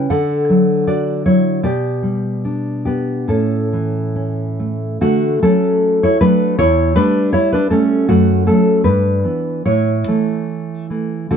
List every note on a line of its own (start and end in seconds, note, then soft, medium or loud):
0.00 0.11 G3 medium
0.00 0.11 C#4 soft
0.10 1.61 D3 medium
0.10 0.84 A4 medium
0.10 0.84 F#5 loud
0.49 1.24 F#3 medium
0.87 1.65 D4 medium
0.87 1.24 F#4 medium
0.87 1.25 D5 medium
1.26 1.65 F#3 soft
1.26 1.63 E4 medium
1.26 1.63 C#5 medium
1.63 3.25 B2 medium
1.63 2.83 G4 medium
1.63 2.82 D5 medium
2.03 3.29 G3 medium
2.45 3.30 D4 medium
2.85 3.27 B3 medium
2.85 3.27 G4 medium
3.28 4.97 A2 medium
3.28 4.14 C#4 medium
3.28 4.54 A4 medium
3.73 5.01 E3 medium
4.15 5.01 C#4 soft
4.59 5.01 A3 soft
5.01 5.41 D3 medium
5.01 5.40 A3 medium
5.01 5.41 F#4 loud
5.43 6.20 F#3 medium
5.43 6.20 A3 medium
5.43 5.99 C#4 medium
5.43 6.00 A4 loud
6.03 6.21 E4 medium
6.03 6.20 C#5 loud
6.21 6.55 F#3 medium
6.21 6.56 A3 medium
6.21 6.57 D4 medium
6.21 6.58 B4 loud
6.59 6.96 E2 medium
6.59 6.94 E4 loud
6.59 6.95 C#5 loud
6.96 7.69 G3 medium
6.96 7.69 A3 medium
6.96 7.32 D4 loud
6.96 7.32 B4 loud
7.33 7.51 E4 loud
7.33 7.52 C#5 loud
7.53 7.71 D4 medium
7.53 7.70 B4 loud
7.70 8.05 G3 medium
7.70 8.05 A3 medium
7.70 8.07 C#4 medium
7.70 8.07 A4 loud
8.09 8.46 F#2 loud
8.09 8.45 A3 medium
8.09 8.45 F#4 loud
8.47 8.81 F#3 medium
8.47 8.82 A3 medium
8.47 8.83 C#4 medium
8.47 8.84 A4 loud
8.84 9.23 G2 medium
8.84 9.62 D4 medium
8.84 9.62 B4 loud
9.24 9.61 E3 soft
9.24 9.62 B3 medium
9.66 10.07 A2 medium
9.66 10.87 E4 medium
9.66 10.86 C#5 loud
10.08 10.89 E3 medium
10.08 10.90 A3 medium
10.90 11.28 E3 soft
10.90 11.28 A3 soft
11.31 11.37 D3 medium
11.31 11.37 A3 medium
11.31 11.37 F#4 medium